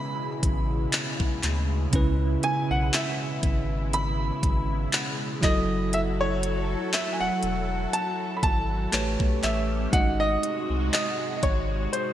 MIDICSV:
0, 0, Header, 1, 7, 480
1, 0, Start_track
1, 0, Key_signature, 4, "minor"
1, 0, Tempo, 1000000
1, 926, Time_signature, 4, 2, 24, 8
1, 5822, End_track
2, 0, Start_track
2, 0, Title_t, "Synth pluck"
2, 0, Program_c, 0, 84
2, 2368, Note_on_c, 0, 78, 59
2, 2828, Note_off_c, 0, 78, 0
2, 5822, End_track
3, 0, Start_track
3, 0, Title_t, "Grand piano"
3, 0, Program_c, 1, 0
3, 0, Note_on_c, 1, 83, 103
3, 669, Note_off_c, 1, 83, 0
3, 1170, Note_on_c, 1, 80, 102
3, 1300, Note_on_c, 1, 78, 89
3, 1302, Note_off_c, 1, 80, 0
3, 1412, Note_off_c, 1, 78, 0
3, 1413, Note_on_c, 1, 76, 92
3, 1890, Note_on_c, 1, 83, 107
3, 1904, Note_off_c, 1, 76, 0
3, 2609, Note_on_c, 1, 75, 98
3, 2630, Note_off_c, 1, 83, 0
3, 2850, Note_on_c, 1, 76, 103
3, 2855, Note_off_c, 1, 75, 0
3, 2879, Note_off_c, 1, 76, 0
3, 2979, Note_on_c, 1, 73, 99
3, 3329, Note_on_c, 1, 76, 94
3, 3338, Note_off_c, 1, 73, 0
3, 3421, Note_on_c, 1, 80, 69
3, 3424, Note_off_c, 1, 76, 0
3, 3457, Note_off_c, 1, 80, 0
3, 3458, Note_on_c, 1, 78, 100
3, 3808, Note_on_c, 1, 81, 98
3, 3818, Note_off_c, 1, 78, 0
3, 4002, Note_off_c, 1, 81, 0
3, 4016, Note_on_c, 1, 83, 72
3, 4047, Note_off_c, 1, 83, 0
3, 4047, Note_on_c, 1, 81, 104
3, 4508, Note_off_c, 1, 81, 0
3, 4528, Note_on_c, 1, 76, 85
3, 4751, Note_off_c, 1, 76, 0
3, 4766, Note_on_c, 1, 78, 96
3, 4895, Note_on_c, 1, 75, 105
3, 4900, Note_off_c, 1, 78, 0
3, 5241, Note_off_c, 1, 75, 0
3, 5249, Note_on_c, 1, 75, 91
3, 5449, Note_off_c, 1, 75, 0
3, 5457, Note_on_c, 1, 75, 62
3, 5487, Note_off_c, 1, 75, 0
3, 5487, Note_on_c, 1, 73, 87
3, 5710, Note_off_c, 1, 73, 0
3, 5725, Note_on_c, 1, 72, 79
3, 5822, Note_off_c, 1, 72, 0
3, 5822, End_track
4, 0, Start_track
4, 0, Title_t, "Tine electric piano"
4, 0, Program_c, 2, 4
4, 0, Control_c, 2, 64, 127
4, 0, Note_on_c, 2, 49, 83
4, 0, Note_on_c, 2, 61, 74
4, 0, Note_on_c, 2, 64, 71
4, 0, Note_on_c, 2, 71, 88
4, 902, Note_off_c, 2, 49, 0
4, 906, Note_off_c, 2, 61, 0
4, 910, Note_off_c, 2, 64, 0
4, 913, Note_off_c, 2, 71, 0
4, 918, Note_on_c, 2, 49, 82
4, 926, Note_on_c, 2, 61, 75
4, 932, Note_on_c, 2, 64, 72
4, 939, Note_on_c, 2, 71, 92
4, 2583, Note_off_c, 2, 49, 0
4, 2587, Note_off_c, 2, 61, 0
4, 2590, Note_off_c, 2, 64, 0
4, 2593, Note_off_c, 2, 71, 0
4, 2595, Note_on_c, 2, 54, 72
4, 2602, Note_on_c, 2, 64, 62
4, 2608, Note_on_c, 2, 66, 63
4, 2613, Control_c, 2, 64, 0
4, 2616, Note_on_c, 2, 69, 77
4, 2693, Control_c, 2, 64, 127
4, 4262, Note_off_c, 2, 54, 0
4, 4265, Note_off_c, 2, 64, 0
4, 4268, Note_off_c, 2, 66, 0
4, 4272, Note_off_c, 2, 69, 0
4, 4281, Note_on_c, 2, 57, 68
4, 4285, Note_on_c, 2, 67, 64
4, 4288, Note_on_c, 2, 71, 64
4, 4292, Control_c, 2, 64, 0
4, 4292, Note_on_c, 2, 73, 75
4, 4383, Control_c, 2, 64, 127
4, 4754, Note_on_c, 2, 56, 70
4, 4762, Note_on_c, 2, 63, 61
4, 4764, Note_off_c, 2, 57, 0
4, 4766, Note_off_c, 2, 67, 0
4, 4767, Note_off_c, 2, 71, 0
4, 4768, Note_on_c, 2, 66, 64
4, 4769, Note_off_c, 2, 73, 0
4, 4772, Control_c, 2, 64, 0
4, 4775, Note_on_c, 2, 75, 76
4, 4858, Control_c, 2, 64, 127
4, 5822, Note_off_c, 2, 56, 0
4, 5822, Note_off_c, 2, 63, 0
4, 5822, Note_off_c, 2, 66, 0
4, 5822, Note_off_c, 2, 75, 0
4, 5822, End_track
5, 0, Start_track
5, 0, Title_t, "Analog synth pad"
5, 0, Program_c, 3, 89
5, 0, Note_on_c, 3, 47, 74
5, 0, Note_on_c, 3, 49, 80
5, 0, Note_on_c, 3, 56, 86
5, 0, Note_on_c, 3, 64, 87
5, 2589, Note_off_c, 3, 47, 0
5, 2589, Note_off_c, 3, 49, 0
5, 2590, Note_off_c, 3, 56, 0
5, 2609, Note_on_c, 3, 54, 82
5, 2609, Note_on_c, 3, 69, 86
5, 2610, Note_on_c, 3, 66, 74
5, 4268, Note_off_c, 3, 64, 0
5, 4271, Note_off_c, 3, 54, 0
5, 4271, Note_off_c, 3, 66, 0
5, 4271, Note_off_c, 3, 69, 0
5, 4291, Note_on_c, 3, 61, 71
5, 4292, Note_on_c, 3, 67, 87
5, 4293, Note_on_c, 3, 57, 82
5, 4764, Note_off_c, 3, 61, 0
5, 4765, Note_off_c, 3, 57, 0
5, 4765, Note_off_c, 3, 67, 0
5, 4765, Note_on_c, 3, 56, 80
5, 4766, Note_on_c, 3, 48, 79
5, 4766, Note_on_c, 3, 66, 91
5, 5822, Note_off_c, 3, 48, 0
5, 5822, Note_off_c, 3, 56, 0
5, 5822, Note_off_c, 3, 66, 0
5, 5822, End_track
6, 0, Start_track
6, 0, Title_t, "Sub bass"
6, 0, Program_c, 4, 38
6, 206, Note_on_c, 4, 33, 99
6, 419, Note_off_c, 4, 33, 0
6, 576, Note_on_c, 4, 35, 83
6, 674, Note_off_c, 4, 35, 0
6, 688, Note_on_c, 4, 38, 94
6, 900, Note_off_c, 4, 38, 0
6, 927, Note_on_c, 4, 37, 112
6, 1140, Note_off_c, 4, 37, 0
6, 1298, Note_on_c, 4, 35, 101
6, 1395, Note_off_c, 4, 35, 0
6, 1647, Note_on_c, 4, 32, 88
6, 2072, Note_off_c, 4, 32, 0
6, 2127, Note_on_c, 4, 32, 92
6, 2339, Note_off_c, 4, 32, 0
6, 2606, Note_on_c, 4, 30, 99
6, 3244, Note_off_c, 4, 30, 0
6, 3458, Note_on_c, 4, 28, 47
6, 3502, Note_off_c, 4, 28, 0
6, 3566, Note_on_c, 4, 28, 93
6, 3779, Note_off_c, 4, 28, 0
6, 4047, Note_on_c, 4, 32, 92
6, 4259, Note_off_c, 4, 32, 0
6, 4287, Note_on_c, 4, 33, 104
6, 4402, Note_off_c, 4, 33, 0
6, 4417, Note_on_c, 4, 35, 98
6, 4514, Note_off_c, 4, 35, 0
6, 4528, Note_on_c, 4, 33, 89
6, 4740, Note_off_c, 4, 33, 0
6, 4767, Note_on_c, 4, 32, 100
6, 4979, Note_off_c, 4, 32, 0
6, 5135, Note_on_c, 4, 36, 89
6, 5233, Note_off_c, 4, 36, 0
6, 5487, Note_on_c, 4, 32, 99
6, 5699, Note_off_c, 4, 32, 0
6, 5822, End_track
7, 0, Start_track
7, 0, Title_t, "Drums"
7, 206, Note_on_c, 9, 36, 89
7, 206, Note_on_c, 9, 42, 73
7, 254, Note_off_c, 9, 36, 0
7, 254, Note_off_c, 9, 42, 0
7, 444, Note_on_c, 9, 42, 81
7, 447, Note_on_c, 9, 39, 109
7, 492, Note_off_c, 9, 42, 0
7, 495, Note_off_c, 9, 39, 0
7, 576, Note_on_c, 9, 36, 95
7, 624, Note_off_c, 9, 36, 0
7, 688, Note_on_c, 9, 39, 63
7, 688, Note_on_c, 9, 42, 78
7, 736, Note_off_c, 9, 39, 0
7, 736, Note_off_c, 9, 42, 0
7, 925, Note_on_c, 9, 42, 83
7, 926, Note_on_c, 9, 36, 121
7, 973, Note_off_c, 9, 42, 0
7, 974, Note_off_c, 9, 36, 0
7, 1167, Note_on_c, 9, 42, 66
7, 1215, Note_off_c, 9, 42, 0
7, 1407, Note_on_c, 9, 42, 62
7, 1409, Note_on_c, 9, 39, 117
7, 1455, Note_off_c, 9, 42, 0
7, 1457, Note_off_c, 9, 39, 0
7, 1646, Note_on_c, 9, 42, 60
7, 1647, Note_on_c, 9, 36, 97
7, 1694, Note_off_c, 9, 42, 0
7, 1695, Note_off_c, 9, 36, 0
7, 1888, Note_on_c, 9, 42, 69
7, 1936, Note_off_c, 9, 42, 0
7, 2127, Note_on_c, 9, 36, 91
7, 2128, Note_on_c, 9, 42, 70
7, 2175, Note_off_c, 9, 36, 0
7, 2176, Note_off_c, 9, 42, 0
7, 2364, Note_on_c, 9, 42, 79
7, 2367, Note_on_c, 9, 39, 110
7, 2412, Note_off_c, 9, 42, 0
7, 2415, Note_off_c, 9, 39, 0
7, 2606, Note_on_c, 9, 36, 113
7, 2608, Note_on_c, 9, 39, 66
7, 2608, Note_on_c, 9, 42, 74
7, 2654, Note_off_c, 9, 36, 0
7, 2656, Note_off_c, 9, 39, 0
7, 2656, Note_off_c, 9, 42, 0
7, 2847, Note_on_c, 9, 42, 78
7, 2895, Note_off_c, 9, 42, 0
7, 3087, Note_on_c, 9, 42, 69
7, 3135, Note_off_c, 9, 42, 0
7, 3326, Note_on_c, 9, 42, 62
7, 3329, Note_on_c, 9, 39, 114
7, 3374, Note_off_c, 9, 42, 0
7, 3377, Note_off_c, 9, 39, 0
7, 3564, Note_on_c, 9, 42, 56
7, 3612, Note_off_c, 9, 42, 0
7, 3808, Note_on_c, 9, 42, 69
7, 3856, Note_off_c, 9, 42, 0
7, 4046, Note_on_c, 9, 36, 88
7, 4047, Note_on_c, 9, 42, 73
7, 4094, Note_off_c, 9, 36, 0
7, 4095, Note_off_c, 9, 42, 0
7, 4284, Note_on_c, 9, 42, 74
7, 4287, Note_on_c, 9, 39, 113
7, 4332, Note_off_c, 9, 42, 0
7, 4335, Note_off_c, 9, 39, 0
7, 4416, Note_on_c, 9, 36, 96
7, 4464, Note_off_c, 9, 36, 0
7, 4529, Note_on_c, 9, 39, 65
7, 4529, Note_on_c, 9, 42, 76
7, 4577, Note_off_c, 9, 39, 0
7, 4577, Note_off_c, 9, 42, 0
7, 4766, Note_on_c, 9, 36, 120
7, 4767, Note_on_c, 9, 42, 75
7, 4814, Note_off_c, 9, 36, 0
7, 4815, Note_off_c, 9, 42, 0
7, 5008, Note_on_c, 9, 42, 67
7, 5056, Note_off_c, 9, 42, 0
7, 5247, Note_on_c, 9, 42, 61
7, 5250, Note_on_c, 9, 39, 111
7, 5295, Note_off_c, 9, 42, 0
7, 5298, Note_off_c, 9, 39, 0
7, 5485, Note_on_c, 9, 42, 60
7, 5486, Note_on_c, 9, 36, 92
7, 5533, Note_off_c, 9, 42, 0
7, 5534, Note_off_c, 9, 36, 0
7, 5728, Note_on_c, 9, 42, 64
7, 5776, Note_off_c, 9, 42, 0
7, 5822, End_track
0, 0, End_of_file